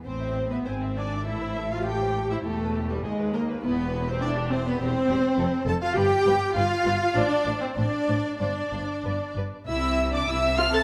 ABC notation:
X:1
M:2/4
L:1/16
Q:1/4=100
K:Am
V:1 name="Violin section"
c3 B c2 d2 | e3 f g3 e | A3 G ^G2 _B2 | B3 c d2 c B |
[K:C] c6 a f | g4 f4 | d3 c d4 | d6 z2 |
e3 d e2 f a |]
V:2 name="Violin section"
c e c e ^g e g e | A c A c A c A c | G B G B ^d B d B | E G E G E G E G |
[K:C] G2 G2 A2 A2 | B2 B2 B2 B2 | c2 c2 c2 c2 | c2 c2 B2 B2 |
e'3 d' e'2 f' a' |]
V:3 name="Viola section"
C3 B, C2 D2 | E3 F G3 E | A,3 G, ^G,2 _B,2 | B,3 C D2 C B, |
[K:C] C6 A F | G4 F4 | D3 C D4 | D6 z2 |
E3 D E2 F A |]
V:4 name="Cello section" clef=bass
A,,4 ^G,,4 | A,,8 | E,,4 ^D,,4 | E,,8 |
[K:C] E,,2 E,,2 F,,2 F,,2 | G,,2 G,,2 G,,2 G,,2 | A,,2 A,,2 A,,2 A,,2 | G,,2 G,,2 G,,2 G,,2 |
C,4 C,4 |]
V:5 name="Double bass section" clef=bass
A,,,4 ^G,,,4 | A,,,8 | E,,,4 ^D,,4 | E,,,8 |
[K:C] E,,,2 E,,,2 F,,,2 F,,,2 | G,,,2 G,,,2 G,,,2 G,,,2 | A,,,2 A,,,2 A,,,2 A,,,2 | G,,,2 G,,,2 G,,,2 G,,,2 |
C,,4 C,,4 |]